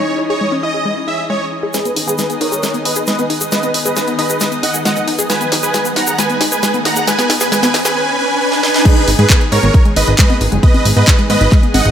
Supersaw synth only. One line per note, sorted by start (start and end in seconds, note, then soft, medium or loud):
0.00 0.20 C#5 loud
0.30 0.53 C#5 loud
0.63 0.94 D#5 loud
1.08 1.23 E5 medium
1.30 1.45 C#5 medium
1.74 1.97 G#4 medium
1.74 1.97 B4 loud
2.07 2.31 G#4 medium
2.07 2.31 B4 loud
2.41 2.72 A#4 medium
2.41 2.72 C#5 loud
2.85 3.01 B4 medium
2.85 3.01 D#5 medium
3.07 3.23 B4 medium
3.07 3.23 D#5 medium
3.52 3.75 B4 medium
3.52 3.75 D#5 loud
3.85 4.08 B4 medium
3.85 4.09 D#5 medium
4.19 4.50 B4 medium
4.19 4.50 D#5 medium
4.63 4.79 D#5 medium
4.63 4.79 F#5 medium
4.85 5.01 D#5 medium
4.85 5.01 F#5 medium
5.30 5.53 B4 medium
5.30 5.53 G#5 medium
5.63 5.86 B4 medium
5.63 5.86 G#5 medium
5.97 6.17 F#5 medium
5.97 6.17 A#5 medium
6.19 6.42 B4 medium
6.19 6.42 G#5 loud
6.52 6.75 B4 medium
6.52 6.75 G#5 medium
6.85 7.06 F#5 medium
6.85 7.06 A#5 medium
7.07 7.31 B4 medium
7.07 7.31 G#5 loud
7.41 7.50 B4 medium
7.41 7.50 G#5 medium
7.52 7.75 B4 medium
7.52 7.75 G#5 loud
7.85 7.95 B4 medium
7.85 7.95 G#5 loud
7.97 8.17 B4 medium
7.97 8.17 G#5 loud
8.19 8.39 B4 medium
8.19 8.39 G#5 loud
8.41 8.61 B4 medium
8.41 8.61 G#5 loud
8.63 8.84 B4 medium
8.63 8.84 G#5 loud
8.85 9.08 G#4 medium
9.19 9.42 G#4 medium
9.19 9.42 B4 loud
9.52 9.83 A#4 medium
9.52 9.83 C#5 medium
9.97 10.12 B4 medium
9.97 10.12 D#5 loud
10.19 10.34 B4 medium
10.19 10.34 D#5 medium
10.63 10.86 B4 medium
10.63 10.86 D#5 loud
10.97 11.20 B4 medium
10.97 11.20 D#5 medium
11.30 11.61 B4 medium
11.30 11.61 D#5 loud
11.74 11.90 D#5 medium
11.74 11.90 F#5 loud